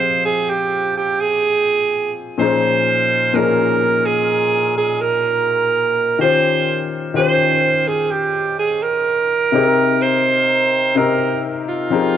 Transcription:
Already playing: F3 C4 G4 G#4 C5 D#5 F5
0.25 G#4
0.49 G4
0.97 G4
1.21 G#4
2.38 A#2 F3 C#4 D#4 G#4 C5
2.42 C5
3.33 A#2 F3 C#4 D#4 G#4 A#4
3.38 A#4
4.06 G#4
4.78 G#4
5.01 A#4
6.19 D#3 C#4 F4 G4 C5
6.23 C5
7.14 D#3 C#4 F4 G4 C5
7.18 C5
7.87 G#4
8.11 G4
8.59 G#4
8.83 A#4
9.52 C3 C4 D#4 G4
9.56 G#4
9.63 A#4
10.02 C5
10.95 C3 C4 D#4 G4 A#4
11.68 F4
11.90 F3 C4 D#4 G4 G#4 A#4

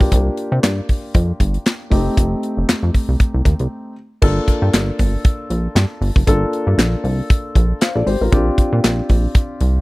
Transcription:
Already playing: A#3 D4 F4 G4
0.01 B1, kick
0.12 C2, kick, closed hi-hat
0.37 closed hi-hat
0.52 C3
0.63 G2, snare, clap, closed hi-hat
0.89 kick, open hi-hat
1.14 F2, kick, closed hi-hat
1.40 G1, kick, closed hi-hat
1.54 closed hi-hat
1.66 snare, clap, closed hi-hat
1.90 F1 A3 C4 D#4 G4, kick, open hi-hat
2.17 F1, kick, closed hi-hat
2.43 closed hi-hat
2.57 F1
2.69 F2, snare, clap, closed hi-hat
2.83 F2
2.94 kick, open hi-hat
3.08 C2
3.20 kick, closed hi-hat
3.34 C2
3.45 D#2, kick, closed hi-hat
3.59 C2, closed hi-hat
4.22 G1 A#3 D4 F4 A4, kick, crash
4.48 kick, closed hi-hat
4.62 G2
4.73 G1, snare, clap, closed hi-hat
4.99 G1, kick, open hi-hat
5.25 kick, closed hi-hat
5.50 A#1, closed hi-hat
5.75 G2, snare, clap, closed hi-hat
6.01 G1, open hi-hat
6.16 F#1, kick
6.27 G1 A#3 D4 F4 A4, kick, closed hi-hat
6.53 closed hi-hat
6.67 G2
6.78 A#1, snare, clap, closed hi-hat
7.04 C2, open hi-hat
7.30 kick, closed hi-hat
7.55 A#1, kick, closed hi-hat
7.81 C5 F5, snare, clap, closed hi-hat
7.95 A#1 A4 D5
8.06 G#1 G4 C5, open hi-hat
8.21 A1 F4 A#4
8.31 A#1 C4 D4 F4 G4, kick, closed hi-hat
8.58 kick, closed hi-hat
8.73 A#2
8.84 A#1, snare, clap, closed hi-hat
9.09 A#1, kick, open hi-hat
9.35 kick, closed hi-hat
9.61 C2, closed hi-hat

